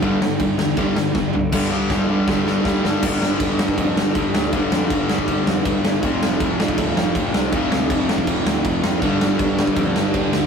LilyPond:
<<
  \new Staff \with { instrumentName = "Distorted electric guitar" } { \clef bass \time 4/4 \key c \lydian \tempo 4 = 160 <g, d g>8 <g, d>8 <g, d>8 <g, d>8 <g, d g>8 <g, d>8 <g, d>8 <g, d>8 | <g, d g>8 <g, d g>8 <g, d g>8 <g, d g>8 <g, d g>8 <g, d g>8 <g, d g>8 <g, d g>8 | \key f \lydian r1 | r1 |
r1 | r1 | <g, d g>2~ <g, d g>8 <g, d g>8 <g, d g>4 | }
  \new Staff \with { instrumentName = "Distorted electric guitar" } { \clef bass \time 4/4 \key c \lydian <g, d g>2. <g, d g>8 r8 | <g, d g>8 <g, d g>8 <g, d g>8 <g, d g>8 <g, d g>8 <g, d g>8 <g, d g>8 <g, d g>8 | \key f \lydian <g, d g>4. <g, d g>4. <g, d g>4 | <g, d g>4. <g, d g>4. <g, d g>4 |
<f, c f>4. <f, c f>4. <f, c f>4 | <f, c f>4. <f, c f>4. <f, c f>4 | <g, d g>4. <g, d g>4. <g, d g>4 | }
  \new Staff \with { instrumentName = "Overdriven electric guitar" } { \clef bass \time 4/4 \key c \lydian <g, d g>8 <g, d>8 <g, d>8 <g, d>8 <g, d g>8 <g, d>8 <g, d>8 <g, d>8 | <g, d g>8 <g, d g>8 <g, d g>8 <g, d g>8 <g, d g>8 <g, d g>8 <g, d g>8 <g, d g>8 | \key f \lydian <g, d g>1 | <g, d g>1 |
<f, c f>1 | <f, c f>1 | <g, d g>1 | }
  \new Staff \with { instrumentName = "Picked electric bass" } { \clef bass \time 4/4 \key c \lydian g,,8 g,,8 g,,8 e,8 g,,8 g,,8 g,,8 g,,8 | g,,4 g,,4 g,,8 g,,8 g,8 g,,8 | \key f \lydian g,,8 g,,8 g,,8 g,8 f,8 g,,8 g,,8 d,8 | g,,8 f,8 g,,8 g,,8 g,,8 f,8 g,,8 g,,8 |
f,,8 f,,8 f,,8 f,8 d,8 f,,8 f,,8 c,8 | f,,8 d,8 f,,8 f,,8 f,,8 d,8 f,,8 f,,8 | g,,8 g,,8 g,,8 g,8 f,8 g,,8 g,,8 d,8 | }
  \new DrumStaff \with { instrumentName = "Drums" } \drummode { \time 4/4 <cymc bd>8 sn8 <cymc bd>8 sn8 <cymc bd>8 sn8 <bd sn>8 tomfh8 | <cymc bd sn>4 <bd sn>4 <bd sn>8 sn8 <bd sn>8 sn8 | <cymc bd>8 sn8 <cymc bd>8 sn16 bd16 <cymc bd>8 sn8 <cymc bd>8 sn8 | <cymc bd>8 sn8 <cymc bd>8 sn16 bd16 <cymc bd>8 sn8 <cymc bd>8 sn8 |
<cymc bd>8 sn8 <cymc bd>8 sn16 bd16 <cymc bd>8 sn8 <cymc bd>8 sn8 | <cymc bd>8 sn8 <cymc bd>8 sn16 bd16 <cymc bd>8 sn8 <cymc bd>8 sn8 | <cymc bd>8 sn8 <cymc bd>8 sn16 bd16 <cymc bd>8 sn8 <cymc bd>8 sn8 | }
>>